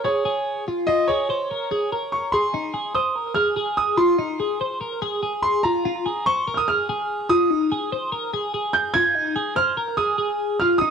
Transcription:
0.04 G#4 C#5
0.25 G#4
0.68 F4
0.87 F4 D#5
1.07 G#4 C#5
1.30 C5
1.51 A#4
1.71 G#4
1.92 A#4
2.12 C#6
2.32 G#4 C6
2.54 D#4
2.74 G#4
2.95 C5 D#6
3.16 A#4
3.34 G#4 F6
3.56 G#4
3.77 D#6
3.97 F4 C6
4.19 D#4
4.40 G#4
4.61 C5
4.81 A#4
5.02 G#4
5.23 G#4
5.42 C6
5.63 F4 A#5
5.85 F4
6.06 G#4
6.26 C5 C#6
6.48 A#4
6.54 D#6 F6
6.68 G#4 F6
6.89 G#4
7.29 F4 D#6
7.50 D#4
7.72 G#4
7.92 C5
8.12 A#4
8.34 G#4
8.54 G#4
8.73 G6
8.94 F4 G#6
9.15 D#4
9.36 G#4
9.56 C5 F6
9.77 A#4
9.97 G#4 D#6
10.18 G#4
10.60 F4 F6
10.78 D#4 D#6

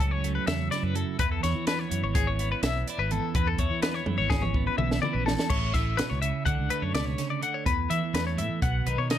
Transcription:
Already playing: C#2 F#2 F#3 A3 E4
0.00 C#4 A4, kick, closed hi-hat
0.11 C#5
0.24 A3, closed hi-hat
0.35 B4
0.46 E2 C#3 E5, snare, closed hi-hat
0.71 E4 D5, snare, closed hi-hat
0.83 F#2 B4
0.95 F#2 A4, closed hi-hat
1.19 E2 B4, kick, closed hi-hat
1.32 A4
1.43 E2 E4 C#5, snare, closed hi-hat
1.55 E3
1.67 B3 B4, snare, closed hi-hat
1.79 C#5
1.90 F#2 E3, closed hi-hat
2.03 G#1 C#5
2.15 C#4 G#4, kick, closed hi-hat
2.27 C#5
2.39 B3, closed hi-hat
2.52 B4
2.63 B1 E2 E5, snare, closed hi-hat
2.88 E4 D5, closed hi-hat
2.98 G#1 B4
3.11 E2 A4, closed hi-hat
3.35 E2 B4, kick, closed hi-hat
3.47 A4
3.58 E2 E4 C#5, kick, closed hi-hat
3.70 E3
3.82 B3 B4, snare, closed hi-hat
3.94 C#5
4.06 F#2 E3, high tom
4.18 G#1 C#5
4.30 C#4 G#4, kick, snare
4.42 C#5, mid tom
4.54 B3, kick
4.67 B4
4.78 B1 E2 E5, mid tom
4.91 snare
5.02 E4 D5, mid tom
5.13 A#1 B4
5.26 E2 A4, snare
5.39 snare
5.50 A1 A2 C#5, kick, crash
5.74 A2 E5, kick, snare, closed hi-hat
5.97 B2 B4, snare, closed hi-hat
6.10 C#2 C#5
6.22 C#3 E5, closed hi-hat
6.46 D2 D3 F#5, kick, closed hi-hat
6.59 C#2
6.70 A3 B4, closed hi-hat
6.82 F#2 C#5
6.94 C#2 B2 D5, snare, closed hi-hat
7.06 C#5
7.18 C#3, snare, closed hi-hat
7.30 D5
7.42 D3 F#5, closed hi-hat
7.54 C#5
7.66 E2 B4, kick, closed hi-hat
7.90 E3 E5, closed hi-hat
8.14 E2 A3 B4, snare, closed hi-hat
8.27 C#5
8.37 A2 E3 E5, closed hi-hat
8.49 E3
8.62 B1 B2 F#5, kick, closed hi-hat
8.86 B1 D#3 B4, closed hi-hat
8.98 B2 C#5
9.10 D#3 D#5, snare, closed hi-hat

